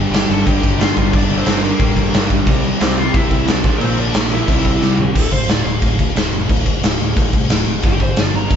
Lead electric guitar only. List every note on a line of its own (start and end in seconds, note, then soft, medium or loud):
0.13 0.29 G4 medium
0.13 0.30 G5 medium
0.31 0.47 A4 medium
0.31 0.47 A5 loud
0.48 0.79 G4 medium
0.48 0.81 G5 loud
0.80 0.95 F4 medium
0.80 0.95 F5 medium
0.98 1.13 F4 medium
0.98 1.12 F5 loud
1.12 1.36 D4 medium
1.12 1.39 D5 medium
1.37 1.61 C4 medium
1.37 1.61 C5 medium
1.61 2.25 A#3 medium
1.61 2.26 A#4 medium
2.81 2.96 C4 medium
2.81 2.98 C5 medium
2.97 3.13 F4 medium
2.97 3.15 F5 loud
3.14 3.45 E4 medium
3.14 3.48 E5 loud
3.48 3.75 D4 medium
3.48 3.75 D5 medium
3.77 3.96 C4 medium
3.77 3.81 A#4 medium
3.81 3.99 C5 medium
4.00 4.31 D4 medium
4.00 4.31 D5 loud
4.31 4.95 E4 medium
4.31 4.95 E5 medium
5.15 5.32 A4 medium
5.32 5.49 C5 medium
5.51 5.64 D5 medium
5.64 5.98 F5 medium
7.86 8.01 G4 loud
8.02 8.19 C5 medium
8.19 8.35 D5 medium
8.35 8.56 A#5 loud